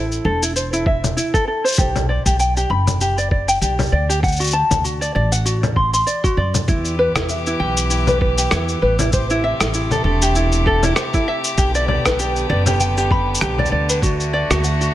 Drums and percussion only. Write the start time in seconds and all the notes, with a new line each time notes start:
0.12 cabasa
0.43 cabasa
0.56 cabasa
0.73 cabasa
0.86 kick
1.04 low conga, cabasa
1.18 cabasa
1.34 kick, cabasa
1.65 cabasa
1.67 cabasa
1.72 cabasa
1.74 cabasa
1.76 kick, cabasa
1.79 cabasa
1.96 low conga, cabasa
2.26 kick, cabasa
2.39 cabasa
2.57 cabasa
2.87 low conga, cabasa
3.01 cabasa
3.18 cabasa
3.31 kick
3.48 cabasa
3.62 cabasa
3.79 low conga, cabasa
3.81 cabasa
3.86 cabasa
3.88 cabasa
3.91 cabasa
4.10 cabasa
4.23 kick, cabasa
4.28 cabasa
4.32 cabasa
4.36 cabasa
4.40 cabasa
4.44 cabasa
4.47 cabasa
4.51 cabasa
4.71 kick, low conga, cabasa
4.85 cabasa
5.02 cabasa
5.32 cabasa
5.46 cabasa
5.63 low conga, cabasa
5.76 kick
5.94 cabasa
6.07 cabasa
6.24 kick, cabasa
6.54 low conga, cabasa
6.68 kick, cabasa
6.85 cabasa
7.16 kick, cross-stick, low conga, cabasa
7.29 cabasa
7.46 cabasa
7.77 cabasa
7.90 cabasa
8.07 low conga, cabasa
8.21 kick
8.38 cabasa
8.51 cross-stick, cabasa
8.68 cabasa
8.99 low conga, cabasa
9.13 kick, cabasa
9.30 cabasa
9.61 cross-stick, cabasa
9.74 cabasa
9.91 low conga, cabasa
10.22 cabasa
10.35 cabasa
10.52 cabasa
10.66 kick
10.83 low conga, cabasa
10.96 cross-stick, cabasa
11.14 kick, cabasa
11.44 cabasa
11.58 kick, cabasa
11.75 cabasa
11.88 low conga
12.05 kick, cross-stick, cabasa
12.19 cabasa
12.36 cabasa
12.66 low conga, cabasa
12.80 cabasa
12.97 cabasa
13.11 kick
13.35 cabasa
13.41 cross-stick
13.59 low conga
13.65 cabasa
13.89 cabasa
14.02 kick, cabasa
14.20 cabasa
14.51 cross-stick, low conga, cabasa
14.64 cabasa
14.81 cabasa